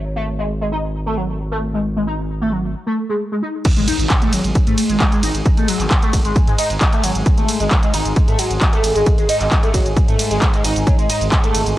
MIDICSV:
0, 0, Header, 1, 6, 480
1, 0, Start_track
1, 0, Tempo, 451128
1, 44, Time_signature, 4, 2, 24, 8
1, 12537, End_track
2, 0, Start_track
2, 0, Title_t, "Analog synth lead"
2, 0, Program_c, 0, 81
2, 168, Note_on_c, 0, 57, 102
2, 227, Note_off_c, 0, 57, 0
2, 409, Note_on_c, 0, 56, 74
2, 444, Note_off_c, 0, 56, 0
2, 649, Note_on_c, 0, 56, 77
2, 684, Note_off_c, 0, 56, 0
2, 765, Note_on_c, 0, 63, 76
2, 802, Note_off_c, 0, 63, 0
2, 1129, Note_on_c, 0, 57, 97
2, 1216, Note_off_c, 0, 57, 0
2, 1245, Note_on_c, 0, 54, 75
2, 1282, Note_off_c, 0, 54, 0
2, 1609, Note_on_c, 0, 57, 103
2, 1667, Note_off_c, 0, 57, 0
2, 1847, Note_on_c, 0, 56, 78
2, 1883, Note_off_c, 0, 56, 0
2, 2088, Note_on_c, 0, 56, 78
2, 2123, Note_off_c, 0, 56, 0
2, 2203, Note_on_c, 0, 63, 75
2, 2241, Note_off_c, 0, 63, 0
2, 2567, Note_on_c, 0, 57, 101
2, 2655, Note_off_c, 0, 57, 0
2, 2683, Note_on_c, 0, 54, 75
2, 2721, Note_off_c, 0, 54, 0
2, 3047, Note_on_c, 0, 57, 101
2, 3106, Note_off_c, 0, 57, 0
2, 3289, Note_on_c, 0, 56, 78
2, 3324, Note_off_c, 0, 56, 0
2, 3528, Note_on_c, 0, 56, 75
2, 3563, Note_off_c, 0, 56, 0
2, 3643, Note_on_c, 0, 63, 77
2, 3681, Note_off_c, 0, 63, 0
2, 4009, Note_on_c, 0, 56, 79
2, 4044, Note_off_c, 0, 56, 0
2, 4124, Note_on_c, 0, 63, 80
2, 4162, Note_off_c, 0, 63, 0
2, 4489, Note_on_c, 0, 57, 99
2, 4576, Note_off_c, 0, 57, 0
2, 4606, Note_on_c, 0, 54, 82
2, 4642, Note_off_c, 0, 54, 0
2, 4968, Note_on_c, 0, 57, 104
2, 5026, Note_off_c, 0, 57, 0
2, 5209, Note_on_c, 0, 56, 76
2, 5244, Note_off_c, 0, 56, 0
2, 5450, Note_on_c, 0, 56, 80
2, 5484, Note_off_c, 0, 56, 0
2, 5565, Note_on_c, 0, 63, 78
2, 5602, Note_off_c, 0, 63, 0
2, 5929, Note_on_c, 0, 57, 102
2, 6016, Note_off_c, 0, 57, 0
2, 6045, Note_on_c, 0, 54, 83
2, 6082, Note_off_c, 0, 54, 0
2, 6409, Note_on_c, 0, 57, 100
2, 6467, Note_off_c, 0, 57, 0
2, 6648, Note_on_c, 0, 56, 76
2, 6683, Note_off_c, 0, 56, 0
2, 6888, Note_on_c, 0, 56, 77
2, 6923, Note_off_c, 0, 56, 0
2, 7004, Note_on_c, 0, 63, 75
2, 7041, Note_off_c, 0, 63, 0
2, 7368, Note_on_c, 0, 57, 104
2, 7456, Note_off_c, 0, 57, 0
2, 7484, Note_on_c, 0, 54, 80
2, 7521, Note_off_c, 0, 54, 0
2, 7848, Note_on_c, 0, 57, 104
2, 7906, Note_off_c, 0, 57, 0
2, 8089, Note_on_c, 0, 56, 76
2, 8123, Note_off_c, 0, 56, 0
2, 8329, Note_on_c, 0, 56, 75
2, 8364, Note_off_c, 0, 56, 0
2, 8444, Note_on_c, 0, 63, 77
2, 8481, Note_off_c, 0, 63, 0
2, 8808, Note_on_c, 0, 57, 99
2, 8895, Note_off_c, 0, 57, 0
2, 8922, Note_on_c, 0, 54, 75
2, 8961, Note_off_c, 0, 54, 0
2, 9287, Note_on_c, 0, 57, 107
2, 9346, Note_off_c, 0, 57, 0
2, 9527, Note_on_c, 0, 56, 80
2, 9562, Note_off_c, 0, 56, 0
2, 9768, Note_on_c, 0, 56, 77
2, 9803, Note_off_c, 0, 56, 0
2, 9883, Note_on_c, 0, 63, 82
2, 9921, Note_off_c, 0, 63, 0
2, 10248, Note_on_c, 0, 57, 100
2, 10335, Note_off_c, 0, 57, 0
2, 10365, Note_on_c, 0, 54, 81
2, 10402, Note_off_c, 0, 54, 0
2, 10728, Note_on_c, 0, 57, 101
2, 10786, Note_off_c, 0, 57, 0
2, 10968, Note_on_c, 0, 56, 82
2, 11003, Note_off_c, 0, 56, 0
2, 11208, Note_on_c, 0, 56, 78
2, 11243, Note_off_c, 0, 56, 0
2, 11324, Note_on_c, 0, 63, 74
2, 11362, Note_off_c, 0, 63, 0
2, 11565, Note_on_c, 0, 54, 83
2, 11602, Note_off_c, 0, 54, 0
2, 11688, Note_on_c, 0, 56, 79
2, 11723, Note_off_c, 0, 56, 0
2, 11804, Note_on_c, 0, 63, 81
2, 11842, Note_off_c, 0, 63, 0
2, 12169, Note_on_c, 0, 57, 98
2, 12256, Note_off_c, 0, 57, 0
2, 12537, End_track
3, 0, Start_track
3, 0, Title_t, "Synth drone"
3, 0, Program_c, 1, 95
3, 3885, Note_on_c, 1, 56, 78
3, 3886, Note_on_c, 1, 44, 78
3, 12537, Note_off_c, 1, 44, 0
3, 12537, Note_off_c, 1, 56, 0
3, 12537, End_track
4, 0, Start_track
4, 0, Title_t, "FM bass"
4, 0, Program_c, 2, 39
4, 0, Note_on_c, 2, 32, 87
4, 2923, Note_off_c, 2, 32, 0
4, 4008, Note_on_c, 2, 32, 79
4, 4082, Note_off_c, 2, 32, 0
4, 4249, Note_on_c, 2, 32, 86
4, 4322, Note_off_c, 2, 32, 0
4, 4605, Note_on_c, 2, 32, 97
4, 4684, Note_off_c, 2, 32, 0
4, 4730, Note_on_c, 2, 32, 86
4, 4803, Note_off_c, 2, 32, 0
4, 4971, Note_on_c, 2, 44, 78
4, 5043, Note_off_c, 2, 44, 0
4, 5210, Note_on_c, 2, 32, 87
4, 5282, Note_off_c, 2, 32, 0
4, 5564, Note_on_c, 2, 32, 102
4, 5643, Note_off_c, 2, 32, 0
4, 5687, Note_on_c, 2, 32, 83
4, 5761, Note_off_c, 2, 32, 0
4, 5927, Note_on_c, 2, 32, 79
4, 6001, Note_off_c, 2, 32, 0
4, 6167, Note_on_c, 2, 32, 84
4, 6241, Note_off_c, 2, 32, 0
4, 6525, Note_on_c, 2, 32, 97
4, 6603, Note_off_c, 2, 32, 0
4, 6650, Note_on_c, 2, 32, 87
4, 6723, Note_off_c, 2, 32, 0
4, 6888, Note_on_c, 2, 44, 83
4, 6962, Note_off_c, 2, 44, 0
4, 7130, Note_on_c, 2, 32, 81
4, 7203, Note_off_c, 2, 32, 0
4, 7485, Note_on_c, 2, 32, 100
4, 7564, Note_off_c, 2, 32, 0
4, 7611, Note_on_c, 2, 32, 84
4, 7683, Note_off_c, 2, 32, 0
4, 7851, Note_on_c, 2, 32, 79
4, 7923, Note_off_c, 2, 32, 0
4, 8089, Note_on_c, 2, 32, 86
4, 8162, Note_off_c, 2, 32, 0
4, 8446, Note_on_c, 2, 32, 101
4, 8524, Note_off_c, 2, 32, 0
4, 8572, Note_on_c, 2, 32, 80
4, 8644, Note_off_c, 2, 32, 0
4, 8811, Note_on_c, 2, 44, 79
4, 8883, Note_off_c, 2, 44, 0
4, 9050, Note_on_c, 2, 32, 83
4, 9123, Note_off_c, 2, 32, 0
4, 9403, Note_on_c, 2, 32, 93
4, 9482, Note_off_c, 2, 32, 0
4, 9528, Note_on_c, 2, 32, 86
4, 9602, Note_off_c, 2, 32, 0
4, 9769, Note_on_c, 2, 32, 78
4, 9842, Note_off_c, 2, 32, 0
4, 10009, Note_on_c, 2, 32, 83
4, 10082, Note_off_c, 2, 32, 0
4, 10365, Note_on_c, 2, 32, 100
4, 10443, Note_off_c, 2, 32, 0
4, 10490, Note_on_c, 2, 32, 82
4, 10563, Note_off_c, 2, 32, 0
4, 10730, Note_on_c, 2, 44, 79
4, 10803, Note_off_c, 2, 44, 0
4, 10969, Note_on_c, 2, 32, 84
4, 11042, Note_off_c, 2, 32, 0
4, 11324, Note_on_c, 2, 32, 93
4, 11403, Note_off_c, 2, 32, 0
4, 11448, Note_on_c, 2, 32, 83
4, 11522, Note_off_c, 2, 32, 0
4, 11689, Note_on_c, 2, 32, 75
4, 11762, Note_off_c, 2, 32, 0
4, 11929, Note_on_c, 2, 32, 84
4, 12002, Note_off_c, 2, 32, 0
4, 12285, Note_on_c, 2, 32, 97
4, 12364, Note_off_c, 2, 32, 0
4, 12409, Note_on_c, 2, 32, 83
4, 12482, Note_off_c, 2, 32, 0
4, 12537, End_track
5, 0, Start_track
5, 0, Title_t, "Impact"
5, 0, Program_c, 3, 103
5, 3884, Note_on_c, 3, 60, 81
5, 5804, Note_off_c, 3, 60, 0
5, 12537, End_track
6, 0, Start_track
6, 0, Title_t, "Drums"
6, 3883, Note_on_c, 9, 42, 81
6, 3883, Note_on_c, 9, 49, 105
6, 3883, Note_on_c, 9, 82, 40
6, 3885, Note_on_c, 9, 36, 125
6, 3990, Note_off_c, 9, 42, 0
6, 3990, Note_off_c, 9, 49, 0
6, 3990, Note_off_c, 9, 82, 0
6, 3991, Note_off_c, 9, 36, 0
6, 4008, Note_on_c, 9, 42, 56
6, 4008, Note_on_c, 9, 82, 27
6, 4115, Note_off_c, 9, 42, 0
6, 4115, Note_off_c, 9, 82, 0
6, 4126, Note_on_c, 9, 46, 107
6, 4126, Note_on_c, 9, 51, 76
6, 4126, Note_on_c, 9, 82, 71
6, 4232, Note_off_c, 9, 46, 0
6, 4232, Note_off_c, 9, 51, 0
6, 4232, Note_off_c, 9, 82, 0
6, 4250, Note_on_c, 9, 42, 53
6, 4250, Note_on_c, 9, 82, 30
6, 4356, Note_off_c, 9, 42, 0
6, 4356, Note_off_c, 9, 82, 0
6, 4364, Note_on_c, 9, 39, 124
6, 4364, Note_on_c, 9, 42, 81
6, 4364, Note_on_c, 9, 82, 41
6, 4365, Note_on_c, 9, 36, 120
6, 4470, Note_off_c, 9, 39, 0
6, 4470, Note_off_c, 9, 42, 0
6, 4470, Note_off_c, 9, 82, 0
6, 4471, Note_off_c, 9, 36, 0
6, 4488, Note_on_c, 9, 42, 58
6, 4488, Note_on_c, 9, 82, 28
6, 4595, Note_off_c, 9, 42, 0
6, 4595, Note_off_c, 9, 82, 0
6, 4604, Note_on_c, 9, 46, 101
6, 4604, Note_on_c, 9, 51, 76
6, 4604, Note_on_c, 9, 82, 68
6, 4710, Note_off_c, 9, 46, 0
6, 4710, Note_off_c, 9, 51, 0
6, 4710, Note_off_c, 9, 82, 0
6, 4728, Note_on_c, 9, 42, 54
6, 4728, Note_on_c, 9, 82, 30
6, 4835, Note_off_c, 9, 42, 0
6, 4835, Note_off_c, 9, 82, 0
6, 4844, Note_on_c, 9, 42, 83
6, 4844, Note_on_c, 9, 82, 41
6, 4845, Note_on_c, 9, 36, 113
6, 4951, Note_off_c, 9, 36, 0
6, 4951, Note_off_c, 9, 42, 0
6, 4951, Note_off_c, 9, 82, 0
6, 4969, Note_on_c, 9, 42, 57
6, 4969, Note_on_c, 9, 82, 29
6, 5075, Note_off_c, 9, 42, 0
6, 5075, Note_off_c, 9, 82, 0
6, 5083, Note_on_c, 9, 46, 109
6, 5083, Note_on_c, 9, 51, 82
6, 5083, Note_on_c, 9, 82, 74
6, 5190, Note_off_c, 9, 46, 0
6, 5190, Note_off_c, 9, 51, 0
6, 5190, Note_off_c, 9, 82, 0
6, 5209, Note_on_c, 9, 42, 57
6, 5209, Note_on_c, 9, 82, 30
6, 5315, Note_off_c, 9, 42, 0
6, 5315, Note_off_c, 9, 82, 0
6, 5324, Note_on_c, 9, 39, 126
6, 5324, Note_on_c, 9, 42, 90
6, 5324, Note_on_c, 9, 82, 42
6, 5325, Note_on_c, 9, 36, 122
6, 5431, Note_off_c, 9, 36, 0
6, 5431, Note_off_c, 9, 39, 0
6, 5431, Note_off_c, 9, 42, 0
6, 5431, Note_off_c, 9, 82, 0
6, 5449, Note_on_c, 9, 42, 55
6, 5449, Note_on_c, 9, 82, 28
6, 5556, Note_off_c, 9, 42, 0
6, 5556, Note_off_c, 9, 82, 0
6, 5565, Note_on_c, 9, 46, 109
6, 5565, Note_on_c, 9, 51, 83
6, 5565, Note_on_c, 9, 82, 73
6, 5671, Note_off_c, 9, 46, 0
6, 5671, Note_off_c, 9, 51, 0
6, 5671, Note_off_c, 9, 82, 0
6, 5688, Note_on_c, 9, 42, 56
6, 5688, Note_on_c, 9, 82, 30
6, 5795, Note_off_c, 9, 42, 0
6, 5795, Note_off_c, 9, 82, 0
6, 5805, Note_on_c, 9, 36, 127
6, 5806, Note_on_c, 9, 42, 84
6, 5806, Note_on_c, 9, 82, 41
6, 5911, Note_off_c, 9, 36, 0
6, 5912, Note_off_c, 9, 42, 0
6, 5912, Note_off_c, 9, 82, 0
6, 5930, Note_on_c, 9, 42, 54
6, 5930, Note_on_c, 9, 82, 28
6, 6037, Note_off_c, 9, 42, 0
6, 6037, Note_off_c, 9, 82, 0
6, 6046, Note_on_c, 9, 46, 110
6, 6046, Note_on_c, 9, 51, 76
6, 6046, Note_on_c, 9, 82, 70
6, 6153, Note_off_c, 9, 46, 0
6, 6153, Note_off_c, 9, 51, 0
6, 6153, Note_off_c, 9, 82, 0
6, 6170, Note_on_c, 9, 39, 38
6, 6170, Note_on_c, 9, 42, 53
6, 6170, Note_on_c, 9, 82, 29
6, 6277, Note_off_c, 9, 39, 0
6, 6277, Note_off_c, 9, 42, 0
6, 6277, Note_off_c, 9, 82, 0
6, 6285, Note_on_c, 9, 36, 121
6, 6286, Note_on_c, 9, 39, 119
6, 6286, Note_on_c, 9, 42, 84
6, 6286, Note_on_c, 9, 82, 39
6, 6392, Note_off_c, 9, 36, 0
6, 6393, Note_off_c, 9, 39, 0
6, 6393, Note_off_c, 9, 42, 0
6, 6393, Note_off_c, 9, 82, 0
6, 6411, Note_on_c, 9, 42, 57
6, 6411, Note_on_c, 9, 82, 29
6, 6517, Note_off_c, 9, 42, 0
6, 6517, Note_off_c, 9, 82, 0
6, 6525, Note_on_c, 9, 36, 66
6, 6525, Note_on_c, 9, 46, 109
6, 6525, Note_on_c, 9, 51, 75
6, 6525, Note_on_c, 9, 82, 69
6, 6631, Note_off_c, 9, 36, 0
6, 6632, Note_off_c, 9, 46, 0
6, 6632, Note_off_c, 9, 51, 0
6, 6632, Note_off_c, 9, 82, 0
6, 6650, Note_on_c, 9, 42, 54
6, 6650, Note_on_c, 9, 82, 30
6, 6756, Note_off_c, 9, 42, 0
6, 6756, Note_off_c, 9, 82, 0
6, 6765, Note_on_c, 9, 36, 117
6, 6765, Note_on_c, 9, 42, 86
6, 6765, Note_on_c, 9, 82, 41
6, 6871, Note_off_c, 9, 36, 0
6, 6872, Note_off_c, 9, 42, 0
6, 6872, Note_off_c, 9, 82, 0
6, 6889, Note_on_c, 9, 42, 60
6, 6889, Note_on_c, 9, 82, 28
6, 6995, Note_off_c, 9, 42, 0
6, 6995, Note_off_c, 9, 82, 0
6, 7006, Note_on_c, 9, 46, 115
6, 7006, Note_on_c, 9, 51, 80
6, 7006, Note_on_c, 9, 82, 72
6, 7112, Note_off_c, 9, 46, 0
6, 7112, Note_off_c, 9, 51, 0
6, 7112, Note_off_c, 9, 82, 0
6, 7130, Note_on_c, 9, 42, 56
6, 7130, Note_on_c, 9, 82, 31
6, 7237, Note_off_c, 9, 42, 0
6, 7237, Note_off_c, 9, 82, 0
6, 7245, Note_on_c, 9, 36, 119
6, 7246, Note_on_c, 9, 39, 123
6, 7246, Note_on_c, 9, 42, 90
6, 7246, Note_on_c, 9, 82, 43
6, 7351, Note_off_c, 9, 36, 0
6, 7352, Note_off_c, 9, 39, 0
6, 7352, Note_off_c, 9, 42, 0
6, 7352, Note_off_c, 9, 82, 0
6, 7369, Note_on_c, 9, 42, 56
6, 7369, Note_on_c, 9, 82, 30
6, 7475, Note_off_c, 9, 42, 0
6, 7475, Note_off_c, 9, 82, 0
6, 7485, Note_on_c, 9, 46, 115
6, 7485, Note_on_c, 9, 51, 80
6, 7485, Note_on_c, 9, 82, 76
6, 7592, Note_off_c, 9, 46, 0
6, 7592, Note_off_c, 9, 51, 0
6, 7592, Note_off_c, 9, 82, 0
6, 7609, Note_on_c, 9, 42, 58
6, 7609, Note_on_c, 9, 82, 31
6, 7715, Note_off_c, 9, 42, 0
6, 7715, Note_off_c, 9, 82, 0
6, 7724, Note_on_c, 9, 42, 79
6, 7724, Note_on_c, 9, 82, 41
6, 7725, Note_on_c, 9, 36, 127
6, 7831, Note_off_c, 9, 36, 0
6, 7831, Note_off_c, 9, 42, 0
6, 7831, Note_off_c, 9, 82, 0
6, 7848, Note_on_c, 9, 42, 54
6, 7848, Note_on_c, 9, 82, 28
6, 7954, Note_off_c, 9, 42, 0
6, 7954, Note_off_c, 9, 82, 0
6, 7964, Note_on_c, 9, 46, 109
6, 7964, Note_on_c, 9, 51, 73
6, 7964, Note_on_c, 9, 82, 72
6, 8070, Note_off_c, 9, 46, 0
6, 8070, Note_off_c, 9, 51, 0
6, 8070, Note_off_c, 9, 82, 0
6, 8089, Note_on_c, 9, 42, 54
6, 8089, Note_on_c, 9, 82, 31
6, 8195, Note_off_c, 9, 42, 0
6, 8195, Note_off_c, 9, 82, 0
6, 8204, Note_on_c, 9, 39, 120
6, 8204, Note_on_c, 9, 42, 80
6, 8204, Note_on_c, 9, 82, 41
6, 8205, Note_on_c, 9, 36, 126
6, 8311, Note_off_c, 9, 36, 0
6, 8311, Note_off_c, 9, 39, 0
6, 8311, Note_off_c, 9, 42, 0
6, 8311, Note_off_c, 9, 82, 0
6, 8329, Note_on_c, 9, 42, 57
6, 8329, Note_on_c, 9, 82, 30
6, 8435, Note_off_c, 9, 42, 0
6, 8435, Note_off_c, 9, 82, 0
6, 8444, Note_on_c, 9, 46, 111
6, 8444, Note_on_c, 9, 51, 77
6, 8444, Note_on_c, 9, 82, 69
6, 8551, Note_off_c, 9, 46, 0
6, 8551, Note_off_c, 9, 51, 0
6, 8551, Note_off_c, 9, 82, 0
6, 8568, Note_on_c, 9, 42, 54
6, 8568, Note_on_c, 9, 82, 30
6, 8675, Note_off_c, 9, 42, 0
6, 8675, Note_off_c, 9, 82, 0
6, 8684, Note_on_c, 9, 42, 81
6, 8684, Note_on_c, 9, 82, 41
6, 8685, Note_on_c, 9, 36, 121
6, 8791, Note_off_c, 9, 36, 0
6, 8791, Note_off_c, 9, 42, 0
6, 8791, Note_off_c, 9, 82, 0
6, 8809, Note_on_c, 9, 42, 56
6, 8809, Note_on_c, 9, 82, 29
6, 8915, Note_off_c, 9, 42, 0
6, 8915, Note_off_c, 9, 82, 0
6, 8924, Note_on_c, 9, 46, 119
6, 8924, Note_on_c, 9, 51, 75
6, 8924, Note_on_c, 9, 82, 76
6, 9030, Note_off_c, 9, 46, 0
6, 9030, Note_off_c, 9, 51, 0
6, 9030, Note_off_c, 9, 82, 0
6, 9049, Note_on_c, 9, 42, 55
6, 9049, Note_on_c, 9, 82, 30
6, 9156, Note_off_c, 9, 42, 0
6, 9156, Note_off_c, 9, 82, 0
6, 9165, Note_on_c, 9, 36, 122
6, 9165, Note_on_c, 9, 39, 124
6, 9165, Note_on_c, 9, 42, 86
6, 9165, Note_on_c, 9, 82, 43
6, 9271, Note_off_c, 9, 36, 0
6, 9271, Note_off_c, 9, 39, 0
6, 9271, Note_off_c, 9, 42, 0
6, 9271, Note_off_c, 9, 82, 0
6, 9289, Note_on_c, 9, 42, 54
6, 9289, Note_on_c, 9, 82, 29
6, 9395, Note_off_c, 9, 42, 0
6, 9395, Note_off_c, 9, 82, 0
6, 9403, Note_on_c, 9, 46, 112
6, 9403, Note_on_c, 9, 51, 78
6, 9403, Note_on_c, 9, 82, 79
6, 9510, Note_off_c, 9, 46, 0
6, 9510, Note_off_c, 9, 51, 0
6, 9510, Note_off_c, 9, 82, 0
6, 9528, Note_on_c, 9, 42, 54
6, 9528, Note_on_c, 9, 82, 32
6, 9635, Note_off_c, 9, 42, 0
6, 9635, Note_off_c, 9, 82, 0
6, 9644, Note_on_c, 9, 42, 79
6, 9644, Note_on_c, 9, 82, 45
6, 9645, Note_on_c, 9, 36, 124
6, 9751, Note_off_c, 9, 36, 0
6, 9751, Note_off_c, 9, 42, 0
6, 9751, Note_off_c, 9, 82, 0
6, 9769, Note_on_c, 9, 42, 51
6, 9769, Note_on_c, 9, 82, 30
6, 9875, Note_off_c, 9, 42, 0
6, 9875, Note_off_c, 9, 82, 0
6, 9884, Note_on_c, 9, 46, 110
6, 9884, Note_on_c, 9, 51, 78
6, 9884, Note_on_c, 9, 82, 76
6, 9991, Note_off_c, 9, 46, 0
6, 9991, Note_off_c, 9, 51, 0
6, 9991, Note_off_c, 9, 82, 0
6, 10008, Note_on_c, 9, 39, 34
6, 10008, Note_on_c, 9, 42, 50
6, 10008, Note_on_c, 9, 82, 31
6, 10114, Note_off_c, 9, 39, 0
6, 10114, Note_off_c, 9, 42, 0
6, 10114, Note_off_c, 9, 82, 0
6, 10124, Note_on_c, 9, 39, 111
6, 10124, Note_on_c, 9, 42, 76
6, 10124, Note_on_c, 9, 82, 43
6, 10125, Note_on_c, 9, 36, 123
6, 10231, Note_off_c, 9, 36, 0
6, 10231, Note_off_c, 9, 39, 0
6, 10231, Note_off_c, 9, 42, 0
6, 10231, Note_off_c, 9, 82, 0
6, 10249, Note_on_c, 9, 42, 53
6, 10249, Note_on_c, 9, 82, 31
6, 10355, Note_off_c, 9, 42, 0
6, 10355, Note_off_c, 9, 82, 0
6, 10365, Note_on_c, 9, 36, 66
6, 10365, Note_on_c, 9, 46, 110
6, 10365, Note_on_c, 9, 51, 79
6, 10365, Note_on_c, 9, 82, 74
6, 10471, Note_off_c, 9, 36, 0
6, 10471, Note_off_c, 9, 46, 0
6, 10471, Note_off_c, 9, 51, 0
6, 10471, Note_off_c, 9, 82, 0
6, 10490, Note_on_c, 9, 42, 53
6, 10490, Note_on_c, 9, 82, 32
6, 10596, Note_off_c, 9, 42, 0
6, 10596, Note_off_c, 9, 82, 0
6, 10604, Note_on_c, 9, 36, 123
6, 10605, Note_on_c, 9, 42, 80
6, 10605, Note_on_c, 9, 82, 45
6, 10711, Note_off_c, 9, 36, 0
6, 10712, Note_off_c, 9, 42, 0
6, 10712, Note_off_c, 9, 82, 0
6, 10730, Note_on_c, 9, 42, 54
6, 10730, Note_on_c, 9, 82, 32
6, 10836, Note_off_c, 9, 42, 0
6, 10836, Note_off_c, 9, 82, 0
6, 10845, Note_on_c, 9, 46, 115
6, 10845, Note_on_c, 9, 51, 81
6, 10845, Note_on_c, 9, 82, 78
6, 10952, Note_off_c, 9, 46, 0
6, 10952, Note_off_c, 9, 51, 0
6, 10952, Note_off_c, 9, 82, 0
6, 10970, Note_on_c, 9, 42, 52
6, 10970, Note_on_c, 9, 82, 32
6, 11077, Note_off_c, 9, 42, 0
6, 11077, Note_off_c, 9, 82, 0
6, 11085, Note_on_c, 9, 36, 116
6, 11087, Note_on_c, 9, 39, 119
6, 11087, Note_on_c, 9, 42, 83
6, 11087, Note_on_c, 9, 82, 46
6, 11191, Note_off_c, 9, 36, 0
6, 11193, Note_off_c, 9, 39, 0
6, 11193, Note_off_c, 9, 42, 0
6, 11193, Note_off_c, 9, 82, 0
6, 11211, Note_on_c, 9, 42, 52
6, 11211, Note_on_c, 9, 82, 30
6, 11317, Note_off_c, 9, 42, 0
6, 11317, Note_off_c, 9, 82, 0
6, 11326, Note_on_c, 9, 46, 117
6, 11326, Note_on_c, 9, 51, 78
6, 11326, Note_on_c, 9, 82, 80
6, 11433, Note_off_c, 9, 46, 0
6, 11433, Note_off_c, 9, 51, 0
6, 11433, Note_off_c, 9, 82, 0
6, 11451, Note_on_c, 9, 42, 53
6, 11451, Note_on_c, 9, 82, 32
6, 11557, Note_off_c, 9, 42, 0
6, 11557, Note_off_c, 9, 82, 0
6, 11564, Note_on_c, 9, 36, 127
6, 11567, Note_on_c, 9, 42, 80
6, 11567, Note_on_c, 9, 82, 43
6, 11671, Note_off_c, 9, 36, 0
6, 11673, Note_off_c, 9, 42, 0
6, 11673, Note_off_c, 9, 82, 0
6, 11691, Note_on_c, 9, 42, 52
6, 11691, Note_on_c, 9, 82, 31
6, 11798, Note_off_c, 9, 42, 0
6, 11798, Note_off_c, 9, 82, 0
6, 11807, Note_on_c, 9, 46, 105
6, 11807, Note_on_c, 9, 51, 80
6, 11807, Note_on_c, 9, 82, 80
6, 11913, Note_off_c, 9, 46, 0
6, 11913, Note_off_c, 9, 51, 0
6, 11913, Note_off_c, 9, 82, 0
6, 11931, Note_on_c, 9, 42, 49
6, 11931, Note_on_c, 9, 82, 33
6, 12038, Note_off_c, 9, 42, 0
6, 12038, Note_off_c, 9, 82, 0
6, 12045, Note_on_c, 9, 36, 118
6, 12046, Note_on_c, 9, 39, 118
6, 12046, Note_on_c, 9, 42, 74
6, 12046, Note_on_c, 9, 82, 43
6, 12151, Note_off_c, 9, 36, 0
6, 12152, Note_off_c, 9, 39, 0
6, 12152, Note_off_c, 9, 42, 0
6, 12152, Note_off_c, 9, 82, 0
6, 12170, Note_on_c, 9, 42, 53
6, 12170, Note_on_c, 9, 82, 33
6, 12276, Note_off_c, 9, 42, 0
6, 12276, Note_off_c, 9, 82, 0
6, 12285, Note_on_c, 9, 46, 106
6, 12285, Note_on_c, 9, 51, 81
6, 12285, Note_on_c, 9, 82, 77
6, 12392, Note_off_c, 9, 46, 0
6, 12392, Note_off_c, 9, 51, 0
6, 12392, Note_off_c, 9, 82, 0
6, 12410, Note_on_c, 9, 42, 50
6, 12410, Note_on_c, 9, 82, 32
6, 12516, Note_off_c, 9, 42, 0
6, 12516, Note_off_c, 9, 82, 0
6, 12537, End_track
0, 0, End_of_file